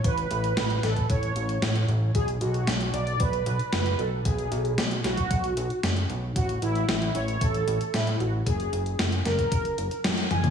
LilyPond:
<<
  \new Staff \with { instrumentName = "Analog polysynth" } { \time 4/4 \key a \major \tempo 4 = 114 b'4. a'8 cis''4. r8 | gis'8 fis'4 d''8 b'4 b'8 a'8 | gis'4 r8 fis'4. r4 | fis'8 e'4 cis''8 a'4 e'8 fis'8 |
gis'4 r8 ais'4. r8 gis''8 | }
  \new Staff \with { instrumentName = "Analog synth bass" } { \clef bass \time 4/4 \key a \major a,,8 a,,8 a,,8 a,,8 a,,8 a,,8 a,,8 a,,8 | b,,8 b,,8 b,,8 b,,8 b,,8 b,,8 fis,,8 b,,8 | b,,8 b,,8 b,,8 b,,8 b,,8 b,,8 fis,,8 b,,8 | a,,8 a,,8 a,,8 a,,8 a,,8 a,,8 a,8 a,,8 |
fis,,8 fis,,8 fis,,8 fis,,8 fis,,8 fis,,8 fis,8 fis,,8 | }
  \new DrumStaff \with { instrumentName = "Drums" } \drummode { \time 4/4 <hh bd>16 hh16 hh16 hh16 <hh sn>16 hh16 <hh sn>16 <hh bd>16 <hh bd>16 hh16 hh16 hh16 <hh sn>16 hh16 hh8 | <hh bd>16 hh16 hh16 hh16 <hh sn>16 hh16 hh16 hh16 <hh bd>16 hh16 hh16 hh16 <hh sn>16 hh16 hh8 | <hh bd>16 hh16 hh16 hh16 <hh sn>16 hh16 <hh sn>16 <hh bd>16 <hh bd>16 hh16 hh16 hh16 <hh sn>16 hh16 hh8 | <hh bd>16 hh16 hh16 hh16 <hh sn>16 hh16 hh16 hh16 <hh bd>16 hh16 hh16 hh16 <hh sn>16 hh16 hh8 |
<hh bd>16 hh16 hh16 hh16 <hh sn>16 hh16 <hh sn>16 <hh bd>16 <hh bd>16 hh16 hh16 hh16 <hh sn>16 hh16 <hh tommh>16 <hh toml>16 | }
>>